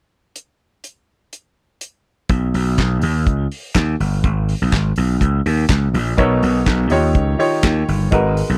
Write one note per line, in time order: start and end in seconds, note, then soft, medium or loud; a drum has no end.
0.36 closed hi-hat medium
0.84 closed hi-hat soft
1.33 closed hi-hat soft
1.81 closed hi-hat medium
2.29 2.49 B1 loud
2.29 kick loud
2.29 closed hi-hat medium
2.54 2.73 B1 medium
2.54 open hi-hat medium
2.78 2.97 B1 medium
2.78 kick medium
2.78 snare medium
2.78 clap medium
2.78 closed hi-hat medium
3.01 3.27 D#2 medium
3.01 open hi-hat medium
3.27 3.46 C#2 medium
3.27 kick medium
3.27 closed hi-hat medium
3.52 open hi-hat medium
3.75 3.94 D#2 medium
3.75 kick medium
3.75 snare loud
3.75 clap medium
3.75 closed hi-hat medium
4.00 4.19 G1 medium
4.00 open hi-hat medium
4.24 4.53 G#1 loud
4.24 kick loud
4.24 closed hi-hat medium
4.49 open hi-hat medium
4.62 4.70 B1 medium
4.72 4.92 G#1 medium
4.72 kick medium
4.72 snare medium
4.72 clap medium
4.72 closed hi-hat medium
4.96 5.16 B1 medium
4.96 open hi-hat medium
5.21 5.40 C#2 loud
5.21 kick medium
5.21 closed hi-hat medium
5.46 5.65 D#2 medium
5.46 open hi-hat medium
5.69 5.89 C#2 medium
5.69 kick loud
5.69 snare loud
5.69 clap medium
5.69 closed hi-hat medium
5.94 6.13 A#1 medium
5.94 open hi-hat medium
6.17 6.37 B1 loud
6.17 6.88 B2 medium
6.17 6.88 B3 medium
6.17 6.88 D#4 medium
6.17 6.89 A#4 medium
6.17 6.89 C#5 medium
6.17 kick loud
6.17 closed hi-hat medium
6.43 6.62 B1 medium
6.43 open hi-hat medium
6.66 6.86 B1 medium
6.66 kick loud
6.66 snare medium
6.66 clap medium
6.66 closed hi-hat medium
6.90 7.15 D#2 loud
6.90 7.30 D#3 medium
6.90 7.30 D#4 medium
6.90 7.30 F4 medium
6.90 7.31 G4 medium
6.90 7.31 C#5 medium
6.90 open hi-hat medium
7.15 7.34 C#2 loud
7.15 kick medium
7.15 closed hi-hat medium
7.38 7.92 D#3 medium
7.38 7.92 D#4 medium
7.38 7.92 F4 medium
7.38 7.92 G4 medium
7.38 7.93 C#5 medium
7.38 open hi-hat medium
7.63 7.83 D#2 medium
7.63 kick loud
7.63 snare loud
7.63 clap medium
7.63 closed hi-hat medium
7.88 8.07 G1 medium
7.88 open hi-hat medium
8.11 8.41 G#1 loud
8.11 8.58 G#3 medium
8.11 8.58 D#4 medium
8.11 8.58 F#4 medium
8.11 8.58 A#4 medium
8.11 8.58 B4 medium
8.11 kick loud
8.11 closed hi-hat medium
8.37 open hi-hat medium
8.49 8.58 B1 medium